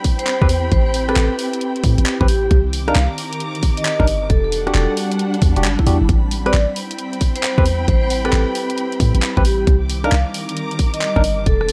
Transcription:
Already playing: string section G3 C4 D4 G5 B5, ambient pad C4 E4 G4 B5
0.04 kick, open hi-hat
0.19 vibraphone C5, closed hi-hat
0.27 clap, closed hi-hat
0.41 808-style bass E2, tine electric piano C4 G4 B4, kick
0.49 open hi-hat
0.72 808-style bass A1, vibraphone C5, kick, closed hi-hat
0.86 vibraphone C5
0.94 open hi-hat
1.09 tine electric piano C4 G4 B4, vibraphone A4, cross-stick, closed hi-hat
1.16 808-style bass A1, clap, closed hi-hat
1.39 open hi-hat
1.53 closed hi-hat
1.61 closed hi-hat
1.76 closed hi-hat
1.84 808-style bass A2, kick, open hi-hat
1.98 808-style bass A1, closed hi-hat
2.06 clap, closed hi-hat
2.21 808-style bass A1, tine electric piano C4 G4 B4, kick
2.28 vibraphone G4, open hi-hat
2.51 808-style bass C2, string section D#3, ambient pad C4 D#4 A#4, kick, closed hi-hat
2.70 string section D6, open hi-hat
2.88 tine electric piano D4 D#4 A#4, vibraphone F5, cross-stick, closed hi-hat
2.92 808-style bass C2, string section A#5, clap, closed hi-hat
3.18 open hi-hat
3.33 closed hi-hat
3.40 closed hi-hat
3.55 closed hi-hat
3.63 kick, open hi-hat
3.77 vibraphone D#5, closed hi-hat
3.85 clap, closed hi-hat
4.00 808-style bass G1, tine electric piano D4 D#4 A#4, kick
4.07 open hi-hat
4.30 808-style bass E1, ambient pad G3 D4 F#5 B5, string section D4, vibraphone A4, kick, closed hi-hat
4.44 vibraphone A4
4.49 string section F#5, open hi-hat
4.56 string section G3
4.67 tine electric piano D4 F#4 G4, cross-stick, closed hi-hat
4.75 808-style bass E1, vibraphone A4, clap, closed hi-hat
4.97 open hi-hat
5.12 closed hi-hat
5.19 closed hi-hat
5.34 closed hi-hat
5.42 808-style bass E2, kick, open hi-hat
5.56 808-style bass E1, tine electric piano D4 F#4 G4, closed hi-hat
5.64 808-style bass G1, clap, closed hi-hat
5.79 vibraphone E4, kick
5.87 808-style bass E2, tine electric piano D4 F#4 G4, vibraphone E4, open hi-hat
6.01 808-style bass G1
6.09 808-style bass A1, ambient pad G3 C4 E4, string section C4, kick, closed hi-hat
6.31 open hi-hat
6.35 string section B5
6.46 tine electric piano C4 G4 B4, vibraphone D5, cross-stick, closed hi-hat
6.54 808-style bass A1, clap, closed hi-hat
6.75 string section G5, open hi-hat
6.91 closed hi-hat
6.99 closed hi-hat
7.13 closed hi-hat
7.21 kick, open hi-hat
7.36 vibraphone C5, closed hi-hat
7.43 clap, closed hi-hat
7.58 808-style bass E2, tine electric piano C4 G4 B4, kick
7.66 open hi-hat
7.88 808-style bass A1, vibraphone C5, kick, closed hi-hat
8.03 vibraphone C5
8.10 open hi-hat
8.25 tine electric piano C4 G4 B4, vibraphone A4, cross-stick, closed hi-hat
8.33 808-style bass A1, clap, closed hi-hat
8.55 open hi-hat
8.70 closed hi-hat
8.78 closed hi-hat
8.92 closed hi-hat
9.00 808-style bass A2, kick, open hi-hat
9.15 808-style bass A1, closed hi-hat
9.22 clap, closed hi-hat
9.37 808-style bass A1, tine electric piano C4 G4 B4, kick
9.45 vibraphone G4, open hi-hat
9.67 808-style bass C2, string section D#3, ambient pad C4 D#4 A#4, kick, closed hi-hat
9.79 string section D6
9.90 open hi-hat
10.04 tine electric piano D4 D#4 A#4, vibraphone F5, cross-stick, closed hi-hat
10.12 808-style bass C2, clap, closed hi-hat
10.31 string section A#5, open hi-hat
10.49 closed hi-hat
10.57 closed hi-hat
10.71 closed hi-hat
10.79 kick, open hi-hat
10.94 vibraphone D#5, closed hi-hat
11.01 clap, closed hi-hat
11.16 808-style bass G1, tine electric piano D4 D#4 A#4, kick
11.24 open hi-hat
11.46 808-style bass E1, string section D4, vibraphone A4, ambient pad F#5 B5, kick, closed hi-hat
11.61 vibraphone A4, cross-stick
11.68 string section G3, open hi-hat

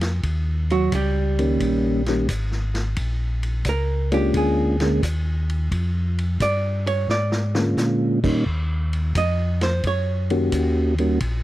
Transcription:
Already playing: tonewheel organ F2
0.01 snare, ride
0.23 tonewheel organ D#2, kick, ride
0.70 hollow-body jazz guitar F#3 F#4, ride
0.92 tonewheel organ C#2, hollow-body jazz guitar G3 G4, kick, hi-hat pedal, ride
1.39 tonewheel organ D#3 G3 A#3 C#4, ride
1.60 tonewheel organ A#1, kick, ride
2.06 tonewheel organ D#3 G3 A#3 C#4 G4, snare, ride
2.29 tonewheel organ G#1, kick, hi-hat pedal, ride
2.52 snare
2.74 snare, ride
2.96 tonewheel organ A#1, kick, ride
3.43 ride
3.65 tonewheel organ C#2, kick, hi-hat pedal, ride
3.69 hollow-body jazz guitar A#4
4.12 tonewheel organ G#3 A#3 C#4 D4 F4, hollow-body jazz guitar G4, ride
4.34 tonewheel organ D2, hollow-body jazz guitar G#4, kick, ride
4.80 tonewheel organ D3 G#3 A#3 C#4 G#4, snare, ride
5.03 tonewheel organ D#2, kick, hi-hat pedal, ride
5.50 ride
5.71 tonewheel organ F2, kick, ride
6.18 ride
6.40 tonewheel organ G2, hollow-body jazz guitar D5, kick, hi-hat pedal, ride
6.87 hollow-body jazz guitar C#5, ride
7.08 tonewheel organ G#2, hollow-body jazz guitar D5, snare
7.32 snare
7.55 tonewheel organ D3 G#3 A#3 C#4 F4, snare
7.77 tonewheel organ A#2, snare, hi-hat pedal
8.23 tonewheel organ D#3 G3 A#3 C#4 D#4, kick, crash
8.46 tonewheel organ D#2, kick
8.93 ride
9.15 tonewheel organ F2, hollow-body jazz guitar D#5, kick, hi-hat pedal, ride
9.61 hollow-body jazz guitar C5, snare, ride
9.84 tonewheel organ F#2, hollow-body jazz guitar C#5, kick, ride
10.30 tonewheel organ D#3 A#3 C#4 F#4 G4, ride
10.52 tonewheel organ D#2, kick, hi-hat pedal, ride
10.98 tonewheel organ D#3 G3 A#3 C#4 F#4, ride
11.20 tonewheel organ A#1, kick, ride

